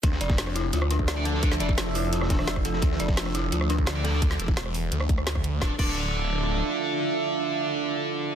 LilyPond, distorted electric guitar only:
\new Staff \with { instrumentName = "Distorted electric guitar" } { \time 4/4 \key d \minor \tempo 4 = 172 r2. r16 <d' a' d''>16 <d' a' d''>8 | <d' a' d''>16 r16 <d' a' d''>16 r2. r16 | r2. r16 <d' a' d''>16 <d' a' d''>8 | r1 |
<d' a' d''>16 r16 <d' a' d''>2.~ <d' a' d''>8~ | <d' a' d''>1 | }